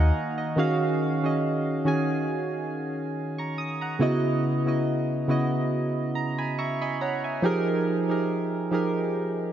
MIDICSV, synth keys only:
0, 0, Header, 1, 2, 480
1, 0, Start_track
1, 0, Tempo, 857143
1, 322, Time_signature, 4, 2, 24, 8
1, 5335, End_track
2, 0, Start_track
2, 0, Title_t, "Synth keys"
2, 0, Program_c, 0, 88
2, 0, Control_c, 0, 64, 127
2, 0, Note_on_c, 0, 51, 91
2, 0, Note_on_c, 0, 58, 79
2, 0, Note_on_c, 0, 66, 75
2, 0, Note_on_c, 0, 75, 55
2, 0, Note_on_c, 0, 77, 62
2, 0, Note_on_c, 0, 78, 65
2, 0, Note_on_c, 0, 80, 71
2, 0, Note_on_c, 0, 82, 73
2, 0, Note_on_c, 0, 85, 64
2, 201, Note_off_c, 0, 78, 0
2, 203, Note_off_c, 0, 75, 0
2, 211, Note_on_c, 0, 75, 61
2, 313, Note_off_c, 0, 51, 0
2, 313, Note_on_c, 0, 51, 96
2, 319, Note_on_c, 0, 61, 91
2, 324, Note_off_c, 0, 66, 0
2, 324, Note_on_c, 0, 66, 95
2, 327, Note_on_c, 0, 68, 94
2, 328, Control_c, 0, 64, 0
2, 330, Note_off_c, 0, 80, 0
2, 332, Note_off_c, 0, 58, 0
2, 332, Note_off_c, 0, 77, 0
2, 332, Note_off_c, 0, 82, 0
2, 332, Note_off_c, 0, 85, 0
2, 332, Note_on_c, 0, 77, 107
2, 429, Control_c, 0, 64, 127
2, 439, Note_off_c, 0, 75, 0
2, 609, Note_off_c, 0, 51, 0
2, 612, Note_off_c, 0, 61, 0
2, 614, Note_off_c, 0, 66, 0
2, 616, Note_off_c, 0, 68, 0
2, 619, Note_off_c, 0, 77, 0
2, 684, Note_on_c, 0, 51, 66
2, 690, Note_on_c, 0, 61, 66
2, 694, Note_on_c, 0, 66, 66
2, 699, Note_on_c, 0, 68, 62
2, 704, Note_on_c, 0, 75, 78
2, 972, Note_off_c, 0, 51, 0
2, 975, Note_off_c, 0, 61, 0
2, 977, Note_off_c, 0, 66, 0
2, 979, Note_off_c, 0, 68, 0
2, 982, Note_off_c, 0, 75, 0
2, 1033, Note_on_c, 0, 51, 85
2, 1038, Note_on_c, 0, 61, 77
2, 1043, Note_on_c, 0, 66, 71
2, 1047, Note_on_c, 0, 68, 73
2, 1051, Note_on_c, 0, 80, 93
2, 1429, Note_off_c, 0, 51, 0
2, 1431, Note_off_c, 0, 61, 0
2, 1434, Note_off_c, 0, 66, 0
2, 1436, Note_off_c, 0, 68, 0
2, 1438, Note_off_c, 0, 80, 0
2, 1895, Note_on_c, 0, 85, 59
2, 1899, Note_on_c, 0, 82, 50
2, 1998, Note_off_c, 0, 85, 0
2, 2000, Note_off_c, 0, 82, 0
2, 2005, Note_on_c, 0, 87, 65
2, 2126, Note_off_c, 0, 87, 0
2, 2135, Note_on_c, 0, 82, 60
2, 2139, Note_on_c, 0, 78, 51
2, 2234, Note_on_c, 0, 49, 102
2, 2238, Note_on_c, 0, 59, 90
2, 2243, Note_on_c, 0, 64, 93
2, 2248, Note_on_c, 0, 66, 96
2, 2250, Control_c, 0, 64, 0
2, 2253, Note_on_c, 0, 75, 109
2, 2360, Control_c, 0, 64, 127
2, 2361, Note_off_c, 0, 82, 0
2, 2363, Note_off_c, 0, 78, 0
2, 2530, Note_off_c, 0, 49, 0
2, 2532, Note_off_c, 0, 59, 0
2, 2534, Note_off_c, 0, 64, 0
2, 2536, Note_off_c, 0, 66, 0
2, 2539, Note_off_c, 0, 75, 0
2, 2605, Note_on_c, 0, 49, 69
2, 2609, Note_on_c, 0, 59, 64
2, 2614, Note_on_c, 0, 64, 65
2, 2618, Note_on_c, 0, 66, 66
2, 2623, Note_on_c, 0, 75, 80
2, 2892, Note_off_c, 0, 49, 0
2, 2894, Note_off_c, 0, 59, 0
2, 2897, Note_off_c, 0, 64, 0
2, 2899, Note_off_c, 0, 66, 0
2, 2901, Note_off_c, 0, 75, 0
2, 2954, Note_on_c, 0, 49, 86
2, 2958, Note_on_c, 0, 59, 72
2, 2963, Note_on_c, 0, 64, 78
2, 2967, Note_on_c, 0, 66, 75
2, 2973, Note_on_c, 0, 75, 86
2, 3349, Note_off_c, 0, 49, 0
2, 3352, Note_off_c, 0, 59, 0
2, 3354, Note_off_c, 0, 64, 0
2, 3356, Note_off_c, 0, 66, 0
2, 3359, Note_off_c, 0, 75, 0
2, 3445, Note_on_c, 0, 82, 71
2, 3564, Note_off_c, 0, 82, 0
2, 3575, Note_on_c, 0, 80, 67
2, 3575, Note_on_c, 0, 83, 61
2, 3579, Note_off_c, 0, 80, 0
2, 3579, Note_on_c, 0, 80, 54
2, 3678, Note_off_c, 0, 83, 0
2, 3680, Note_off_c, 0, 80, 0
2, 3687, Note_on_c, 0, 76, 72
2, 3687, Note_on_c, 0, 85, 69
2, 3691, Note_on_c, 0, 82, 62
2, 3805, Note_off_c, 0, 76, 0
2, 3808, Note_off_c, 0, 85, 0
2, 3810, Note_off_c, 0, 82, 0
2, 3817, Note_on_c, 0, 75, 64
2, 3817, Note_on_c, 0, 83, 69
2, 3820, Note_on_c, 0, 80, 53
2, 3917, Note_off_c, 0, 75, 0
2, 3919, Note_off_c, 0, 83, 0
2, 3921, Note_off_c, 0, 80, 0
2, 3926, Note_on_c, 0, 82, 62
2, 3927, Note_on_c, 0, 73, 68
2, 3930, Note_on_c, 0, 78, 57
2, 4047, Note_off_c, 0, 82, 0
2, 4049, Note_off_c, 0, 78, 0
2, 4055, Note_on_c, 0, 80, 57
2, 4058, Note_on_c, 0, 76, 49
2, 4148, Note_off_c, 0, 73, 0
2, 4155, Note_on_c, 0, 53, 102
2, 4160, Note_on_c, 0, 63, 98
2, 4165, Note_on_c, 0, 67, 94
2, 4168, Control_c, 0, 64, 0
2, 4169, Note_on_c, 0, 68, 91
2, 4174, Note_on_c, 0, 70, 115
2, 4268, Control_c, 0, 64, 127
2, 4281, Note_off_c, 0, 80, 0
2, 4283, Note_off_c, 0, 76, 0
2, 4450, Note_off_c, 0, 53, 0
2, 4453, Note_off_c, 0, 63, 0
2, 4455, Note_off_c, 0, 67, 0
2, 4457, Note_off_c, 0, 68, 0
2, 4460, Note_off_c, 0, 70, 0
2, 4525, Note_on_c, 0, 53, 71
2, 4530, Note_on_c, 0, 63, 70
2, 4534, Note_on_c, 0, 67, 66
2, 4540, Note_on_c, 0, 68, 66
2, 4543, Note_on_c, 0, 70, 80
2, 4812, Note_off_c, 0, 53, 0
2, 4815, Note_off_c, 0, 63, 0
2, 4817, Note_off_c, 0, 67, 0
2, 4820, Note_off_c, 0, 68, 0
2, 4821, Note_off_c, 0, 70, 0
2, 4877, Note_on_c, 0, 53, 81
2, 4881, Note_on_c, 0, 63, 75
2, 4886, Note_on_c, 0, 67, 75
2, 4891, Note_on_c, 0, 68, 75
2, 4895, Note_on_c, 0, 70, 88
2, 5271, Note_off_c, 0, 53, 0
2, 5273, Note_off_c, 0, 63, 0
2, 5275, Note_off_c, 0, 67, 0
2, 5278, Note_off_c, 0, 68, 0
2, 5280, Note_off_c, 0, 70, 0
2, 5335, End_track
0, 0, End_of_file